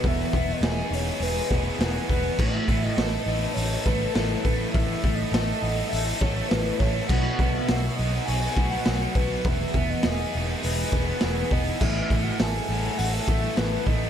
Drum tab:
CC |--------|x-------|--------|x-------|
HH |oooooooo|-ooooooo|oooooooo|-ooooooo|
SD |--o--oo-|--o--oo-|--o--oo-|--o--oo-|
BD |oo---o-o|oo---o-o|oo---o-o|oo---o-o|

CC |--------|x-------|
HH |oooooooo|-ooooooo|
SD |--o--oo-|--o--oo-|
BD |oo---o-o|oo---o-o|